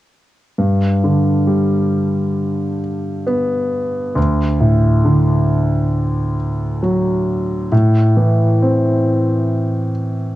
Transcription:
0.58 4.13 G2 soft
1.04 2.79 D3 soft
1.47 3.23 G3 soft
3.27 4.14 B3 soft
4.15 7.67 D2 soft
4.60 6.35 A2 soft
5.05 6.79 D3 soft
6.83 7.69 F#3 soft
7.72 10.36 A2 soft
8.17 9.91 E3 soft
8.62 10.35 C4 soft

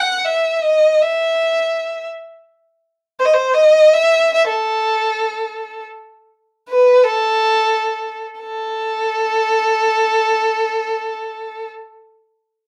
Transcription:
0.00 0.18 F#5 medium
0.18 0.26 F#5 soft
0.25 0.56 E5 medium
0.56 0.64 E5 soft
0.62 1.03 D#5 medium
1.02 2.07 E5 medium
3.20 3.27 C5 medium
3.25 3.35 D#5 medium
3.34 3.56 C5 medium
3.54 3.95 D#5 medium
3.94 4.33 E5 medium
4.34 4.47 E5 medium
4.48 5.83 A4 medium
6.69 7.05 B4 medium
7.03 8.26 A4 medium
8.39 11.70 A4 medium

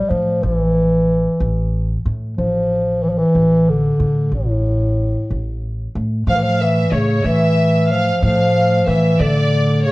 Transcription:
0.00 0.11 G3 medium
0.09 0.38 A2 medium
0.09 0.45 F3 medium
0.43 1.26 A1 medium
0.43 2.05 E3 medium
1.40 1.96 A1 medium
2.06 2.33 A2 medium
2.38 3.21 A1 medium
2.38 3.05 F3 medium
3.03 3.11 E3 medium
3.10 3.20 F3 medium
3.18 3.71 E3 loud
3.35 3.90 A1 medium
3.69 4.35 D3 medium
4.00 4.28 A2 medium
4.32 5.15 A1 medium
4.32 5.63 A2 medium
5.30 5.86 A1 medium
5.95 6.23 A2 medium
6.27 6.83 A2 medium
6.27 6.37 F3 medium
6.27 6.41 F5 medium
6.36 6.45 E3 medium
6.42 6.64 F3 medium
6.42 6.59 F5 medium
6.60 6.96 E3 medium
6.60 6.92 E5 medium
6.92 7.20 A2 medium
6.92 7.25 C#3 medium
6.92 7.25 C#5 medium
7.25 8.08 A2 medium
7.25 7.93 E3 medium
7.25 7.90 E5 medium
7.90 8.23 F3 medium
7.90 8.20 F5 medium
8.22 8.78 A2 loud
8.22 8.89 F3 medium
8.22 8.84 F5 medium
8.87 9.15 A2 medium
8.87 9.23 E3 medium
8.87 9.21 E5 medium
9.20 9.92 A2 medium
9.20 9.87 D3 medium
9.20 9.85 D5 medium
9.84 9.92 C#3 medium
9.84 9.92 C#5 medium

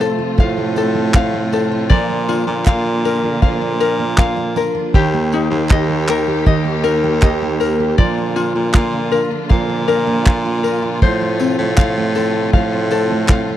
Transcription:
0.00 1.88 C3 medium
0.00 0.37 F3 medium
0.00 0.56 A3 medium
0.00 1.88 A3 medium
0.00 0.75 C4 medium
0.00 1.98 C4 medium
0.00 0.18 F4 medium
0.00 4.91 F4 medium
0.00 0.77 A4 medium
0.00 1.89 C5 medium
0.00 0.39 F5 medium
0.00 tambourine medium
0.18 0.38 F4 medium
0.38 1.87 A2 medium
0.38 1.90 F3 medium
0.38 1.14 F4 medium
0.38 1.16 F5 medium
0.38 kick loud
0.58 0.94 A3 medium
0.76 1.51 C4 medium
0.76 1.52 A4 medium
0.76 tambourine medium
0.95 1.32 A3 medium
1.14 1.71 F4 medium
1.14 2.66 F5 medium
1.14 kick loud
1.14 clap medium
1.34 1.98 A3 medium
1.52 1.98 C4 medium
1.52 1.99 A4 medium
1.52 tambourine medium
1.72 1.91 F4 medium
1.89 2.43 A#2 loud
1.89 4.92 D3 medium
1.89 3.41 F3 medium
1.89 4.92 A#3 medium
1.89 2.66 F4 medium
1.89 4.94 D5 medium
1.89 kick loud
2.10 2.47 A#3 medium
2.29 3.04 D4 medium
2.29 5.02 F4 medium
2.29 tambourine medium
2.47 2.65 A#2 medium
2.47 2.86 A#3 medium
2.65 3.39 A#2 loud
2.65 3.23 F4 medium
2.65 3.41 F5 medium
2.65 kick loud
2.65 clap medium
2.67 clap medium
2.86 3.61 A#3 medium
3.05 3.80 D4 medium
3.05 3.80 A#4 medium
3.05 tambourine medium
3.24 3.42 F4 medium
3.42 4.63 A#2 loud
3.42 4.94 F3 medium
3.42 4.16 F4 medium
3.42 4.17 F5 medium
3.42 kick loud
3.62 3.99 A#3 medium
3.80 4.55 D4 medium
3.80 4.57 A#4 medium
3.80 tambourine medium
3.99 4.36 A#3 medium
4.17 4.73 F4 medium
4.17 4.57 F5 medium
4.17 kick loud
4.17 clap loud
4.17 clap medium
4.37 5.14 A#3 medium
4.56 5.02 D4 medium
4.56 5.70 A#4 medium
4.56 tambourine medium
4.75 4.94 F4 medium
4.94 5.47 D#2 loud
4.94 7.95 D#3 medium
4.94 6.45 D#3 medium
4.94 7.95 A#3 medium
4.94 7.95 G4 medium
4.94 6.09 G4 medium
4.94 5.69 G4 medium
4.94 kick loud
5.14 5.51 A#3 medium
5.32 6.07 D#4 medium
5.32 8.07 D#4 medium
5.32 tambourine medium
5.50 5.68 D#2 medium
5.50 5.89 A#3 medium
5.69 6.43 D#2 loud
5.69 6.26 G4 medium
5.69 6.45 D#5 medium
5.69 kick loud
5.69 clap medium
5.89 6.65 A#3 medium
6.08 6.83 D#4 medium
6.08 6.83 A#4 medium
6.08 clap medium
6.08 tambourine medium
6.28 6.45 G4 medium
6.46 7.95 D#2 loud
6.46 7.98 D#3 medium
6.46 7.22 G4 medium
6.46 7.21 D#5 medium
6.46 kick loud
6.65 7.03 A#3 medium
6.84 7.59 D#4 medium
6.84 7.60 A#4 medium
6.84 tambourine medium
7.04 7.42 A#3 medium
7.22 7.78 G4 medium
7.22 8.06 D#5 medium
7.22 kick loud
7.22 clap medium
7.42 8.17 A#3 medium
7.60 8.06 D#4 medium
7.60 9.11 A#4 medium
7.60 tambourine medium
7.80 7.99 G4 medium
7.98 8.51 A#2 medium
7.98 10.99 D3 medium
7.98 9.50 F3 medium
7.98 10.99 A#3 medium
7.98 8.73 F4 medium
7.98 13.57 F4 medium
7.98 11.02 D5 medium
7.98 kick loud
8.18 8.54 A#3 medium
8.36 9.11 D4 medium
8.36 11.39 F4 medium
8.36 tambourine medium
8.55 8.73 A#2 medium
8.55 8.92 A#3 medium
8.74 9.19 A#2 medium
8.74 9.31 F4 medium
8.74 9.49 F5 medium
8.74 kick loud
8.74 clap medium
8.74 clap loud
8.93 9.68 A#3 medium
9.12 9.87 D4 medium
9.12 9.87 A#4 medium
9.12 tambourine medium
9.31 9.51 F4 medium
9.49 10.98 A#2 loud
9.49 11.01 F3 medium
9.49 10.26 F4 medium
9.49 10.26 F5 medium
9.49 kick loud
9.69 10.06 A#3 medium
9.88 10.63 D4 medium
9.88 10.62 A#4 medium
9.88 tambourine medium
10.07 10.44 A#3 medium
10.26 10.82 F4 medium
10.26 11.77 F5 medium
10.26 kick loud
10.26 clap loud
10.26 clap medium
10.45 11.10 A#3 medium
10.63 11.10 D4 medium
10.63 11.09 A#4 medium
10.63 tambourine medium
10.82 11.02 F4 medium
11.02 11.55 A2 medium
11.02 13.57 C3 medium
11.02 12.54 F3 medium
11.02 13.57 A3 medium
11.02 11.78 F4 medium
11.02 13.57 C5 medium
11.02 kick loud
11.21 11.58 A3 medium
11.40 13.57 C4 medium
11.40 12.15 C4 medium
11.40 tambourine medium
11.58 11.76 A2 medium
11.58 11.96 A3 medium
11.77 12.49 A2 loud
11.77 12.34 F4 medium
11.77 12.53 F5 medium
11.77 kick loud
11.77 clap loud
11.77 clap medium
11.97 12.72 A3 medium
12.15 12.91 C4 medium
12.15 12.90 A4 medium
12.15 tambourine medium
12.35 12.54 F4 medium
12.53 13.57 A2 loud
12.53 13.57 F3 medium
12.53 13.30 F4 medium
12.53 13.30 F5 medium
12.53 kick loud
12.73 13.10 A3 medium
12.91 13.57 C4 medium
12.91 13.57 A4 medium
12.91 tambourine medium
13.11 13.47 A3 medium
13.28 13.57 F4 medium
13.28 13.57 F5 medium
13.28 kick loud
13.28 clap medium
13.28 clap loud
13.49 13.57 A3 medium

